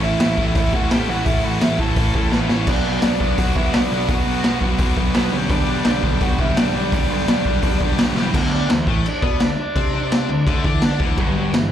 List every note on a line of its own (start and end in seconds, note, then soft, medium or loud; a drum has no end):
0.00 0.14 A1 loud
0.00 0.19 A2 loud
0.00 0.20 E3 medium
0.00 0.21 A3 medium
0.00 0.52 E4 medium
0.00 0.55 E5 loud
0.05 0.21 C#4 loud
0.05 0.21 E4 loud
0.05 0.22 A4 loud
0.19 0.34 A1 loud
0.19 0.37 A2 medium
0.19 0.38 E3 medium
0.19 0.38 A3 medium
0.19 0.39 C#4 medium
0.19 0.39 E4 medium
0.19 0.40 A4 loud
0.19 snare loud
0.19 open hi-hat medium
0.37 0.53 A1 loud
0.37 0.54 A2 loud
0.37 0.55 E3 loud
0.37 0.56 A3 loud
0.37 0.56 C#4 medium
0.37 0.56 E4 medium
0.37 0.57 A4 loud
0.37 kick medium
0.55 0.70 A1 medium
0.55 0.72 A2 loud
0.55 0.73 E3 loud
0.55 0.73 A3 medium
0.55 0.74 C#4 loud
0.55 0.72 E4 medium
0.55 0.74 E4 loud
0.55 0.74 A4 loud
0.55 0.73 E5 loud
0.55 kick loud
0.55 open hi-hat medium
0.73 0.88 A1 loud
0.73 0.89 A2 medium
0.73 0.90 E3 medium
0.73 0.90 A3 medium
0.73 0.91 C#4 medium
0.73 0.91 E4 medium
0.73 0.90 F#4 medium
0.73 0.92 A4 medium
0.73 0.90 F#5 loud
0.73 kick loud
0.90 1.06 A1 medium
0.90 1.07 A2 medium
0.90 1.08 E3 medium
0.90 1.08 A3 medium
0.90 1.09 C#4 loud
0.90 1.09 E4 loud
0.90 1.08 G4 medium
0.90 1.09 A4 medium
0.90 1.09 G5 loud
0.90 snare loud
0.90 open hi-hat medium
1.09 1.23 A1 medium
1.09 1.25 A2 medium
1.09 1.25 E3 medium
1.09 1.26 A3 loud
1.09 1.26 C#4 loud
1.09 1.26 E4 medium
1.09 1.25 F#4 medium
1.09 1.27 A4 loud
1.09 1.25 F#5 medium
1.25 1.41 A1 medium
1.25 1.43 A2 medium
1.25 1.43 E3 loud
1.25 1.43 A3 loud
1.25 1.44 C#4 loud
1.25 1.43 E4 medium
1.25 1.44 E4 loud
1.25 1.45 A4 loud
1.25 1.42 E5 loud
1.25 kick loud
1.25 open hi-hat medium
1.44 1.59 A1 medium
1.44 1.60 A2 medium
1.44 1.61 E3 medium
1.44 1.61 A3 medium
1.44 1.62 C#4 medium
1.44 1.62 E4 medium
1.44 1.61 F#4 medium
1.44 1.63 A4 medium
1.44 1.61 F#5 loud
1.61 1.77 A1 medium
1.61 1.78 A2 medium
1.61 1.79 E3 medium
1.61 1.79 A3 medium
1.61 1.80 C#4 medium
1.61 1.78 E4 medium
1.61 1.80 E4 medium
1.61 1.81 A4 loud
1.61 1.80 E5 medium
1.61 snare loud
1.61 open hi-hat medium
1.79 1.94 A1 medium
1.79 1.96 A2 medium
1.79 1.97 E3 medium
1.79 1.97 A3 medium
1.79 1.98 C#4 medium
1.79 1.98 E4 medium
1.79 2.29 A4 medium
1.79 1.98 A4 loud
1.79 2.34 A5 loud
1.79 kick medium
1.96 2.11 A1 medium
1.96 2.13 A2 medium
1.96 2.14 E3 medium
1.96 2.15 A3 loud
1.96 2.15 C#4 medium
1.96 2.16 E4 loud
1.96 2.16 A4 loud
1.96 kick loud
1.96 open hi-hat medium
2.14 2.29 A1 medium
2.14 2.31 A2 medium
2.14 2.32 E3 medium
2.14 2.32 A3 medium
2.14 2.33 C#4 medium
2.14 2.33 E4 medium
2.14 2.34 A4 medium
2.14 kick medium
2.32 2.47 A1 medium
2.32 2.49 A2 medium
2.32 2.49 E3 medium
2.32 2.50 A3 medium
2.32 2.49 B3 medium
2.32 2.50 C#4 medium
2.32 2.50 E4 medium
2.32 2.51 A4 loud
2.32 2.49 B4 medium
2.32 snare medium
2.49 2.65 A1 medium
2.49 2.66 A2 medium
2.49 2.67 E3 medium
2.49 2.67 A3 loud
2.49 2.66 C#4 medium
2.49 2.67 C#4 medium
2.49 2.67 E4 medium
2.49 2.68 A4 loud
2.49 2.67 C#5 medium
2.49 snare loud
2.67 2.97 B1 loud
2.67 2.85 B2 loud
2.67 2.86 F#3 medium
2.67 2.86 B3 loud
2.67 3.01 D4 medium
2.67 2.86 D4 loud
2.67 2.87 F#4 loud
2.67 3.02 D5 loud
2.67 kick loud
2.67 open hi-hat medium
2.67 crash loud
2.85 3.02 B2 medium
2.85 3.03 F#3 medium
2.85 3.03 B3 medium
2.85 3.04 D4 medium
2.85 3.04 F#4 medium
3.02 3.18 B1 medium
3.02 3.20 B2 medium
3.02 3.20 F#3 medium
3.02 3.21 B3 medium
3.02 3.22 D4 medium
3.02 3.37 D4 medium
3.02 3.21 F#4 loud
3.02 3.36 D5 medium
3.02 snare loud
3.02 open hi-hat medium
3.20 3.35 B1 medium
3.20 3.37 B2 medium
3.20 3.37 F#3 medium
3.20 3.38 B3 medium
3.20 3.39 D4 medium
3.20 3.38 F#4 loud
3.20 kick medium
3.37 3.53 B1 medium
3.37 3.55 B2 medium
3.37 3.55 F#3 loud
3.37 3.57 B3 loud
3.37 3.57 D4 loud
3.37 3.55 F#4 medium
3.37 3.57 F#4 loud
3.37 3.56 F#5 loud
3.37 kick loud
3.37 open hi-hat medium
3.56 3.70 B1 loud
3.56 3.72 B2 medium
3.56 3.72 F#3 medium
3.56 3.74 B3 medium
3.56 3.74 D4 medium
3.56 3.73 E4 medium
3.56 3.74 F#4 medium
3.56 3.73 E5 medium
3.56 kick medium
3.73 3.89 B1 medium
3.73 3.91 B2 medium
3.73 3.91 F#3 medium
3.73 3.92 B3 medium
3.73 4.06 D4 medium
3.73 3.93 D4 medium
3.73 3.92 F#4 medium
3.73 4.08 D5 loud
3.73 snare loud
3.73 open hi-hat medium
3.91 4.06 B1 medium
3.91 4.08 B2 medium
3.91 4.08 F#3 medium
3.91 4.09 B3 medium
3.91 4.10 D4 medium
3.91 4.10 F#4 loud
4.08 4.24 B1 loud
4.08 4.26 B2 loud
4.08 4.26 F#3 loud
4.08 4.28 B3 loud
4.08 4.28 D4 loud
4.08 4.59 F#4 medium
4.08 4.28 F#4 loud
4.08 4.58 F#5 medium
4.08 kick loud
4.08 open hi-hat medium
4.27 4.42 B1 medium
4.27 4.44 B2 medium
4.27 4.43 F#3 medium
4.27 4.45 B3 medium
4.27 4.45 D4 loud
4.27 4.45 F#4 medium
4.44 4.59 B1 loud
4.44 4.61 B2 medium
4.44 4.61 F#3 medium
4.44 4.62 B3 medium
4.44 4.63 D4 loud
4.44 4.62 F#4 loud
4.44 snare loud
4.44 open hi-hat medium
4.61 4.76 B1 medium
4.61 4.78 B2 medium
4.61 4.78 F#3 medium
4.61 4.80 B3 medium
4.61 4.80 D4 loud
4.61 4.80 F#4 medium
4.61 kick medium
4.78 4.94 B1 medium
4.78 4.96 B2 loud
4.78 4.96 F#3 loud
4.78 4.97 B3 loud
4.78 4.98 D4 loud
4.78 4.98 F#4 loud
4.78 kick loud
4.78 open hi-hat medium
4.97 5.12 B1 loud
4.97 5.14 B2 medium
4.97 5.14 F#3 medium
4.97 5.15 B3 medium
4.97 5.15 D4 medium
4.97 5.15 F#4 medium
4.97 kick medium
5.14 5.30 B1 loud
5.14 5.31 B2 medium
5.14 5.32 F#3 medium
5.14 5.33 B3 loud
5.14 5.32 B3 medium
5.14 5.33 D4 loud
5.14 5.32 F#4 loud
5.14 5.33 B4 medium
5.14 snare loud
5.14 open hi-hat medium
5.32 5.47 B1 medium
5.32 5.49 G2 medium
5.32 5.49 B2 loud
5.32 5.49 D3 loud
5.32 5.50 G3 loud
5.32 5.50 B3 loud
5.32 5.49 C#4 medium
5.32 5.51 D4 loud
5.32 5.52 G4 loud
5.32 5.51 C#5 medium
5.49 5.80 B1 medium
5.49 5.66 G2 loud
5.49 5.67 B2 loud
5.49 5.67 D3 loud
5.49 5.68 G3 loud
5.49 5.69 B3 loud
5.49 5.83 D4 medium
5.49 5.69 D4 loud
5.49 5.69 G4 loud
5.49 5.86 D5 medium
5.49 kick loud
5.49 open hi-hat medium
5.67 5.84 G2 medium
5.67 5.85 B2 medium
5.67 5.85 D3 medium
5.67 5.86 G3 medium
5.67 5.86 B3 loud
5.67 5.87 D4 medium
5.67 5.87 G4 medium
5.84 6.00 B1 medium
5.84 6.02 G2 medium
5.84 6.02 B2 medium
5.84 6.03 D3 loud
5.84 6.03 G3 medium
5.84 6.03 B3 medium
5.84 6.19 D4 medium
5.84 6.04 D4 medium
5.84 6.04 G4 medium
5.84 6.23 D5 loud
5.84 snare loud
5.84 open hi-hat medium
6.02 6.18 B1 loud
6.02 6.20 G2 medium
6.02 6.19 B2 medium
6.02 6.21 D3 loud
6.02 6.20 G3 medium
6.02 6.21 B3 loud
6.02 6.22 D4 loud
6.02 6.21 G4 loud
6.02 kick medium
6.21 6.36 B1 medium
6.21 6.38 G2 loud
6.21 6.38 B2 loud
6.21 6.38 D3 medium
6.21 6.38 G3 loud
6.21 6.39 B3 loud
6.21 6.40 D4 loud
6.21 6.38 F#4 medium
6.21 6.40 G4 loud
6.21 6.40 F#5 medium
6.21 kick loud
6.21 open hi-hat medium
6.38 6.53 B1 loud
6.38 6.55 G2 medium
6.38 6.55 B2 medium
6.38 6.56 D3 loud
6.38 6.56 G3 medium
6.38 6.57 B3 medium
6.38 6.58 D4 medium
6.38 6.56 E4 medium
6.38 6.58 G4 medium
6.38 6.58 E5 loud
6.38 kick medium
6.57 6.71 B1 loud
6.57 6.73 G2 medium
6.57 6.74 B2 medium
6.57 6.74 D3 medium
6.57 6.74 G3 medium
6.57 6.75 B3 medium
6.57 6.73 D4 medium
6.57 6.76 D4 medium
6.57 6.76 G4 loud
6.57 6.75 D5 medium
6.57 snare loud
6.57 open hi-hat medium
6.74 6.89 B1 medium
6.74 6.91 G2 medium
6.74 6.91 B2 medium
6.74 6.92 D3 medium
6.74 6.91 G3 medium
6.74 6.92 B3 medium
6.74 6.91 D4 medium
6.74 6.92 D4 medium
6.74 6.93 G4 loud
6.74 6.93 D5 loud
6.92 7.07 B1 loud
6.92 7.08 G2 loud
6.92 7.08 B2 medium
6.92 7.09 D3 loud
6.92 7.09 G3 loud
6.92 7.09 B3 loud
6.92 7.95 D4 medium
6.92 7.10 D4 loud
6.92 7.10 G4 loud
6.92 7.95 D5 medium
6.92 kick loud
6.92 open hi-hat medium
7.09 7.25 B1 medium
7.09 7.26 G2 medium
7.09 7.26 B2 medium
7.09 7.27 D3 medium
7.09 7.27 G3 medium
7.09 7.27 B3 medium
7.09 7.28 D4 loud
7.09 7.28 G4 loud
7.27 7.43 B1 medium
7.27 7.44 G2 loud
7.27 7.44 B2 medium
7.27 7.45 D3 medium
7.27 7.45 G3 medium
7.27 7.46 B3 medium
7.27 7.46 D4 medium
7.27 7.46 G4 loud
7.27 snare loud
7.27 open hi-hat medium
7.45 7.60 B1 medium
7.45 7.61 G2 medium
7.45 7.62 B2 medium
7.45 7.62 D3 medium
7.45 7.62 G3 medium
7.45 7.63 B3 medium
7.45 7.63 D4 loud
7.45 7.64 G4 medium
7.45 kick medium
7.62 7.78 B1 medium
7.62 7.79 G2 loud
7.62 7.80 B2 loud
7.62 7.80 D3 medium
7.62 7.80 G3 loud
7.62 7.81 B3 loud
7.62 7.81 D4 loud
7.62 7.82 G4 loud
7.62 kick loud
7.62 open hi-hat medium
7.81 7.96 B1 medium
7.81 7.97 G2 medium
7.81 7.98 B2 medium
7.81 7.98 D3 loud
7.81 7.98 G3 medium
7.81 7.99 B3 medium
7.81 7.99 D4 medium
7.81 8.00 G4 medium
7.81 kick medium
7.98 8.13 B1 medium
7.98 8.15 G2 medium
7.98 8.15 B2 medium
7.98 8.15 D3 medium
7.98 8.15 F#3 medium
7.98 8.16 G3 medium
7.98 8.17 B3 medium
7.98 8.17 D4 medium
7.98 8.17 F#4 loud
7.98 8.17 G4 medium
7.98 snare loud
7.98 open hi-hat medium
8.15 8.31 B1 medium
8.15 8.33 G2 medium
8.15 8.33 B2 medium
8.15 8.33 D3 medium
8.15 8.33 E3 medium
8.15 8.33 G3 medium
8.15 8.34 B3 medium
8.15 8.34 D4 medium
8.15 8.35 E4 medium
8.15 8.34 G4 medium
8.15 snare medium
8.34 8.67 D2 medium
8.34 8.69 D3 loud
8.34 8.51 F#3 medium
8.34 8.52 F#4 medium
8.34 kick loud
8.34 crash loud
8.34 crash medium
8.52 8.71 D4 medium
8.52 8.69 D5 medium
8.69 8.86 D2 medium
8.69 8.84 D3 medium
8.69 9.03 E3 medium
8.69 9.06 E4 loud
8.69 snare loud
8.69 crash medium
8.87 9.04 A2 loud
8.87 9.05 A3 loud
8.87 kick loud
9.05 9.40 D4 loud
9.05 9.39 D5 medium
9.05 muted picked electric bass stroke soft
9.05 muted distorted electric guitar stroke medium
9.05 crash medium
9.22 9.39 B2 loud
9.22 9.40 B3 medium
9.22 kick loud
9.40 9.57 D2 medium
9.40 9.55 D3 medium
9.40 9.57 D4 medium
9.40 9.57 D5 medium
9.40 snare loud
9.40 crash medium
9.59 9.92 D4 medium
9.59 9.92 D5 medium
9.75 10.25 C3 medium
9.75 10.29 C4 loud
9.75 kick loud
9.75 crash medium
9.95 10.49 D4 loud
9.95 10.44 D5 medium
10.12 snare loud
10.12 crash medium
10.29 10.46 D2 medium
10.29 10.44 D3 medium
10.47 10.63 D2 medium
10.47 10.64 D3 loud
10.47 10.64 A3 loud
10.47 10.64 A4 medium
10.47 kick loud
10.47 crash medium
10.64 10.98 D3 loud
10.64 10.82 E3 medium
10.64 11.00 D4 loud
10.64 10.83 E4 loud
10.64 kick loud
10.81 11.00 D4 loud
10.81 11.00 D5 medium
10.81 snare loud
10.81 crash medium
10.99 11.17 D2 medium
10.99 11.18 D3 loud
10.99 11.17 E3 medium
10.99 11.17 E4 medium
10.99 kick loud
11.17 11.51 G1 loud
11.17 11.53 G2 loud
11.17 11.35 F#3 medium
11.17 11.34 F#4 loud
11.17 kick loud
11.17 crash medium
11.36 11.53 F#3 medium
11.36 11.53 F#4 loud
11.53 11.70 G1 medium
11.53 11.68 G2 medium
11.53 11.72 E3 medium
11.53 11.72 E4 medium
11.53 snare loud
11.53 crash medium